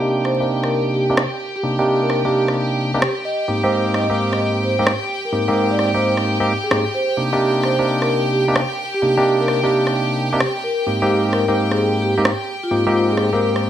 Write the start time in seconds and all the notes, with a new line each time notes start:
Already playing: C3 A#3 D4 D#4 G4 G5
0.25 C5, cross-stick
0.40 C3 A#3 D4 D#4 G4
0.63 A#4, cross-stick
0.94 G4
1.09 C3 A#3 D4 D#4 G4
1.17 cross-stick
1.56 G4
1.63 C3 A#3 D4 D#4 G4
1.79 C3 A#3 D4 D#4 G4
2.02 A#4
2.10 cross-stick
2.25 C3 A#3 D4 D#4 G4
2.48 cross-stick
2.94 C3 A#3 D4 D#4 G4
3.02 cross-stick
3.25 D#5
3.48 G#2 A#3 C4 D#4 G4
3.63 G#2 A#3 C4 D#4 G4 C5
3.94 D#5, cross-stick
4.10 G#2 A#3 C4 D#4 G4
4.32 D#5, cross-stick
4.63 C5
4.79 G#2 A#3 C4 D#4 G4
4.87 cross-stick
5.25 A#4
5.33 G#2 A#3 C4 D#4 G4
5.48 G#2 A#3 C4 D#4 G4 A#4
5.71 D5
5.79 cross-stick
5.94 G#2 A#3 C4 D#4 G4 C5
6.17 cross-stick
6.40 G#2 A#3 C4 D#4 G4
6.63 G#4
6.71 G#2 A#3 C4 D#4 G4, cross-stick
6.94 C5
7.17 C3 A#3 D4 D#4 G4
7.33 C3 A#3 D4 D#4 G4
7.63 C5, cross-stick
7.79 C3 A#3 D4 D#4 G4
8.02 A#4, cross-stick
8.33 G4
8.48 C3 A#3 D4 D#4 G4
8.56 cross-stick
8.94 G4
9.02 C3 A#3 D4 D#4 G4
9.17 C3 A#3 D4 D#4 G4
9.40 A#4
9.48 cross-stick
9.63 C3 A#3 D4 D#4 G4
9.87 cross-stick
10.33 C3 A#3 D4 D#4 G4
10.40 cross-stick
10.64 A#4
10.87 G#2 A#3 C4 D#4 G4
11.02 G#2 A#3 C4 D#4 G4
11.33 A#4, cross-stick
11.48 G#2 A#3 C4 D#4 G4
11.71 G#4, cross-stick
12.02 G4
12.17 G#2 A#3 C4 D#4 G4
12.25 cross-stick
12.63 F4
12.71 G#2 A#3 C4 D#4 G4
12.86 G#2 A#3 C4 D#4 F4 G4
13.10 G#4
13.17 cross-stick
13.33 G#2 A#3 C4 D#4 G4 A#4
13.56 cross-stick